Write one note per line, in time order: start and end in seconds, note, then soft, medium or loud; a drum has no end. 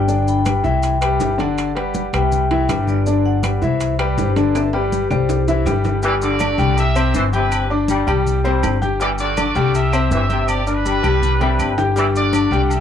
0.00 0.58 G1 medium
0.00 0.25 D5 medium
0.00 0.25 G5 loud
0.08 0.39 D3 medium
0.08 0.39 D4 medium
0.08 0.39 D5 medium
0.08 high conga soft
0.08 maracas medium
0.28 0.62 G5 medium
0.28 0.62 B5 loud
0.28 high conga soft
0.28 maracas medium
0.45 0.60 G3 medium
0.45 0.61 G4 medium
0.45 0.61 B4 medium
0.45 high conga medium
0.45 high timbale medium
0.45 low timbale medium
0.45 claves medium
0.45 maracas medium
0.63 1.16 C2 medium
0.63 0.94 E3 medium
0.63 0.95 E4 medium
0.63 0.95 E5 medium
0.63 1.36 E5 medium
0.63 1.36 G5 loud
0.63 high conga soft
0.63 maracas soft
0.83 high conga soft
0.83 high timbale medium
0.83 maracas medium
1.01 1.32 G3 medium
1.01 1.32 G4 medium
1.01 1.32 B4 medium
1.01 high conga soft
1.01 high timbale loud
1.01 claves medium
1.01 maracas medium
1.20 2.07 G1 medium
1.20 high conga medium
1.20 low timbale medium
1.20 maracas medium
1.38 1.69 D3 medium
1.38 1.69 D4 medium
1.38 1.69 D5 medium
1.38 2.11 D5 medium
1.38 2.17 F#5 medium
1.38 high conga medium
1.38 high timbale medium
1.38 maracas soft
1.58 high conga soft
1.58 high timbale medium
1.58 claves medium
1.58 maracas medium
1.75 2.06 G3 medium
1.75 2.06 G4 medium
1.75 2.07 B4 medium
1.75 high conga soft
1.75 high timbale medium
1.94 high conga medium
1.94 low timbale medium
1.94 maracas medium
2.13 2.65 C2 medium
2.13 2.44 G3 medium
2.13 2.44 G4 medium
2.13 2.44 B4 medium
2.13 2.85 E5 medium
2.13 2.85 G5 medium
2.13 high conga soft
2.13 low conga medium
2.13 high timbale loud
2.13 claves medium
2.13 maracas soft
2.32 high conga soft
2.32 low conga medium
2.32 maracas medium
2.51 2.66 E3 medium
2.51 2.66 E4 medium
2.51 2.66 E5 medium
2.51 high conga soft
2.51 high timbale medium
2.69 3.56 G1 medium
2.69 3.00 G3 medium
2.69 3.00 G4 medium
2.69 3.00 B4 medium
2.69 high conga medium
2.69 high timbale loud
2.69 low timbale medium
2.69 claves medium
2.69 maracas medium
2.87 3.23 B4 medium
2.87 3.25 D5 medium
2.87 high conga medium
2.87 maracas soft
3.06 3.37 D3 medium
3.06 3.37 D4 medium
3.06 3.38 D5 medium
3.06 high conga soft
3.06 maracas medium
3.25 3.60 D5 medium
3.25 3.60 F#5 loud
3.25 high conga soft
3.43 3.59 G3 medium
3.43 3.59 G4 medium
3.43 3.59 B4 medium
3.43 high conga medium
3.43 high timbale medium
3.43 low timbale medium
3.43 claves medium
3.43 maracas medium
3.62 4.14 C2 medium
3.62 3.92 E3 medium
3.62 3.93 E4 medium
3.62 3.98 C5 medium
3.62 3.93 E5 medium
3.62 3.97 E5 medium
3.62 high conga soft
3.62 maracas soft
3.80 high conga soft
3.80 high timbale medium
3.80 maracas medium
3.99 4.30 G3 medium
3.99 4.30 G4 medium
3.99 4.30 B4 medium
3.99 4.18 B4 medium
3.99 4.18 D5 medium
3.99 high conga soft
3.99 high timbale loud
3.99 claves medium
4.18 5.05 G1 loud
4.18 4.36 G4 medium
4.18 4.36 C5 medium
4.18 high conga medium
4.18 low timbale medium
4.18 maracas medium
4.36 4.67 D3 medium
4.36 4.67 D4 medium
4.36 4.46 B4 medium
4.36 4.67 D5 medium
4.36 4.45 D5 medium
4.36 high conga medium
4.36 high timbale medium
4.36 maracas soft
4.55 4.74 B4 medium
4.55 4.75 E5 medium
4.55 high conga soft
4.55 high timbale loud
4.55 claves medium
4.55 maracas medium
4.73 5.04 G3 medium
4.73 5.04 G4 medium
4.73 5.05 B4 medium
4.73 4.92 B4 medium
4.73 4.93 D5 medium
4.73 high conga soft
4.73 high timbale medium
4.92 5.02 G4 medium
4.92 5.01 B4 medium
4.92 high conga medium
4.92 maracas medium
5.11 5.63 C2 medium
5.11 5.41 G3 medium
5.11 5.41 G4 medium
5.11 5.63 C5 medium
5.11 5.42 D5 medium
5.11 high conga soft
5.11 low conga medium
5.11 high timbale medium
5.11 claves medium
5.11 maracas soft
5.29 low timbale medium
5.29 maracas medium
5.48 5.63 E3 medium
5.48 5.63 E4 medium
5.48 5.63 E5 medium
5.48 high conga soft
5.48 low timbale medium
5.48 maracas medium
5.66 6.53 G1 medium
5.66 5.97 G3 medium
5.66 5.97 G4 medium
5.66 5.97 B4 medium
5.66 high conga medium
5.66 low timbale medium
5.66 claves medium
5.66 maracas medium
5.84 high conga medium
5.84 low timbale medium
5.84 maracas soft
6.03 6.13 E3 loud
6.03 6.34 G3 medium
6.03 6.34 G4 medium
6.03 6.14 G4 medium
6.03 6.34 G5 medium
6.03 high conga soft
6.03 low agogo medium
6.03 maracas medium
6.07 6.15 D5 medium
6.22 6.79 D3 medium
6.22 6.75 F#4 medium
6.22 6.75 D5 loud
6.22 high conga soft
6.22 maracas medium
6.39 6.56 D4 medium
6.39 6.56 D5 medium
6.39 6.56 D6 medium
6.39 high conga loud
6.39 low agogo loud
6.39 claves medium
6.39 maracas medium
6.58 7.10 C2 loud
6.58 6.89 G3 medium
6.58 6.89 G4 medium
6.58 6.90 G5 medium
6.58 maracas soft
6.77 7.13 G4 medium
6.77 7.13 E5 loud
6.77 high conga soft
6.77 low agogo medium
6.77 maracas medium
6.95 7.26 C4 medium
6.95 7.27 C5 medium
6.95 7.27 C6 medium
6.95 high conga soft
6.95 low agogo loud
6.95 claves medium
6.95 maracas medium
7.14 8.01 G1 loud
7.14 7.25 E3 loud
7.14 7.24 E4 medium
7.14 7.24 C5 medium
7.14 high conga medium
7.14 maracas medium
7.33 7.65 C3 medium
7.33 7.69 D4 medium
7.33 7.63 G4 medium
7.33 7.69 B4 medium
7.33 7.64 G5 medium
7.33 7.64 G6 medium
7.33 high conga medium
7.33 low agogo medium
7.33 maracas soft
7.51 high conga soft
7.51 low agogo loud
7.51 claves medium
7.51 maracas medium
7.70 8.01 D4 medium
7.70 8.01 D5 medium
7.70 8.01 D6 medium
7.70 high conga soft
7.88 8.20 G3 medium
7.88 high conga medium
7.88 low agogo medium
7.88 maracas medium
8.07 8.59 C2 medium
8.07 8.38 G3 medium
8.07 8.38 G4 medium
8.07 8.38 G5 medium
8.07 high conga soft
8.07 low conga medium
8.07 low agogo loud
8.07 claves medium
8.07 maracas soft
8.26 high conga soft
8.26 low conga medium
8.26 maracas medium
8.44 8.77 G3 medium
8.44 8.75 C4 medium
8.44 8.75 C5 medium
8.44 8.75 C6 medium
8.44 high conga soft
8.44 low agogo medium
8.63 9.50 G1 medium
8.63 high conga medium
8.63 low timbale medium
8.63 low agogo loud
8.63 claves medium
8.63 maracas medium
8.82 8.97 G4 medium
8.82 8.97 G5 medium
8.82 8.97 G6 medium
8.82 high conga medium
8.82 maracas soft
9.00 9.10 E3 loud
9.00 9.30 G3 medium
9.00 9.30 G4 medium
9.00 9.10 G4 medium
9.00 9.09 D5 loud
9.00 9.31 G5 medium
9.00 high conga soft
9.00 low agogo medium
9.00 maracas medium
9.18 9.76 D3 medium
9.18 9.72 F#4 medium
9.18 9.71 D5 loud
9.18 high conga soft
9.18 maracas medium
9.37 9.52 D4 medium
9.37 9.53 D5 medium
9.37 9.53 D6 medium
9.37 high conga medium
9.37 low agogo loud
9.37 claves medium
9.37 maracas medium
9.55 10.07 C2 medium
9.55 9.86 G3 loud
9.55 9.86 G4 medium
9.55 9.86 G5 loud
9.55 maracas soft
9.74 10.12 G4 medium
9.74 10.11 E5 loud
9.74 high conga soft
9.74 low agogo medium
9.74 maracas medium
9.93 10.23 C4 medium
9.93 10.23 C5 medium
9.93 10.24 C6 medium
9.93 high conga soft
9.93 low agogo loud
9.93 claves medium
9.93 maracas medium
10.11 10.98 G1 loud
10.11 10.21 E3 loud
10.11 10.46 G4 medium
10.11 10.46 E5 loud
10.11 high conga medium
10.11 maracas medium
10.29 10.61 C3 medium
10.29 10.60 G4 medium
10.29 10.60 G5 medium
10.29 10.60 G6 medium
10.29 high conga medium
10.29 low agogo medium
10.29 maracas soft
10.48 10.67 G4 medium
10.48 10.67 D5 loud
10.48 high conga soft
10.48 low agogo loud
10.48 claves medium
10.48 maracas medium
10.67 10.97 D4 medium
10.67 11.74 D4 medium
10.67 11.74 B4 loud
10.67 10.97 D5 medium
10.67 10.97 D6 medium
10.67 high conga soft
10.67 maracas medium
10.85 11.16 G3 medium
10.85 high conga medium
10.85 low agogo medium
10.85 maracas medium
11.03 11.55 C2 medium
11.03 11.34 G3 medium
11.03 11.34 G4 medium
11.03 11.34 G5 medium
11.03 high conga medium
11.03 low agogo loud
11.03 claves medium
11.03 maracas soft
11.23 low conga medium
11.23 maracas medium
11.40 11.72 G3 medium
11.40 11.71 C4 medium
11.40 11.71 E5 medium
11.40 11.71 G5 medium
11.40 low conga medium
11.40 high timbale medium
11.40 low agogo medium
11.59 12.46 G1 medium
11.59 low conga medium
11.59 low agogo loud
11.59 claves medium
11.59 maracas medium
11.78 11.93 G4 medium
11.78 11.93 G5 medium
11.78 11.93 G6 medium
11.78 low conga medium
11.78 low timbale loud
11.78 maracas soft
11.96 12.07 E3 loud
11.96 12.26 G3 medium
11.96 12.26 G4 medium
11.96 12.05 G4 medium
11.96 12.05 D5 medium
11.96 12.27 G5 medium
11.96 high conga soft
11.96 low agogo medium
11.96 maracas medium
12.15 12.72 D3 medium
12.15 12.61 F#4 medium
12.15 12.61 D5 loud
12.15 high conga soft
12.15 maracas medium
12.33 12.48 D4 medium
12.33 12.48 D5 medium
12.33 12.48 D6 medium
12.33 high conga medium
12.33 low agogo loud
12.33 claves medium
12.33 maracas medium
12.51 12.80 C2 medium
12.51 12.80 G3 medium
12.51 12.80 G4 medium
12.51 12.80 G5 medium
12.51 maracas soft
12.64 12.71 F#5 medium
12.70 12.80 G4 medium
12.70 12.80 E5 loud
12.70 high conga soft
12.70 low agogo medium
12.70 maracas medium